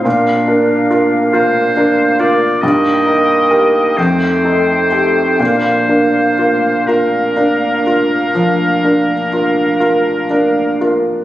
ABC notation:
X:1
M:12/8
L:1/8
Q:3/8=42
K:Bb
V:1 name="Flute"
f4- f z g3 g3 | f3 f8 z |]
V:2 name="Oboe"
z3 c2 d e3 c3 | c3 B8 z |]
V:3 name="Grand piano"
B,, [DB] [FB] [FB] [DB] [FB] G,, [EB] [GB] F,, [EA] [GA] | B,, [DB] [FB] [FB] [DB] [FB] F, [DB] [FB] [FB] [DB] [FB] |]
V:4 name="Clarinet"
D4- D z E3 E3 | D3 D8 z |]
V:5 name="Bassoon"
B,4- B, z B,3 A,3 | B,3 B,8 z |]